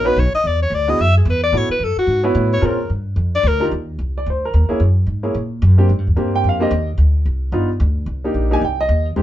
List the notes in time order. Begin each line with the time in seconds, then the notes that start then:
Already playing: A#1
0.04 B3 C#4 D#4 F#4 B4
0.17 B1 C#5
0.33 D#5, muted upright bass stroke
0.44 E2 D5
0.62 C#5
0.70 D2
0.74 D5
0.88 B3 D4 E4 F#4 G#4 D#5
0.98 F#2 E5
1.17 G#4
1.25 E2
1.30 B4
1.43 D5
1.52 A2 B3 C#4 E4 F#4 A4
1.57 C#5
1.69 B4, muted upright bass stroke
1.79 F#2
1.84 A4
1.96 F#4, muted upright bass stroke
2.07 G#2
2.24 B3 C#4 E4 F#4 B4
2.35 A2
2.54 C#5
2.61 A#2 C4 C#4 F4 G#4 A#4
2.66 A#4
2.90 G2
3.16 F2
3.35 D5
3.43 D2
3.48 A#4
3.60 D4 D#4 F4 G4 A#4
3.71 D#2
3.99 C2
4.18 D5
4.26 D2 C5
4.45 A#4
4.54 D#2
4.69 A#3 C#4 E4 G#4, muted upright bass stroke
4.80 F#2
5.07 G#2
5.23 A#3 C#4 E4 G#4
5.34 A#2
5.62 F#2
5.78 A#3 C4 D4 G4
5.89 G#2
5.98 G2
6.07 D#2
6.16 G2 A#3 C4 D4 G4
6.36 G5
6.44 F2
6.49 F5
6.60 A#3 C4 D4 G4 D#5
6.71 D#2
6.98 D2
7.25 C2
7.52 G1 B3 D4 D#4 F4
7.80 D2
8.06 C2
8.24 A#3 D4 D#4 G4
8.34 A#1
8.51 A#3 D4 D#4 G4 G#5
8.61 C2 G5
8.81 D#5
8.89 D#2
9.16 F2 G#3 C4 D#4 G4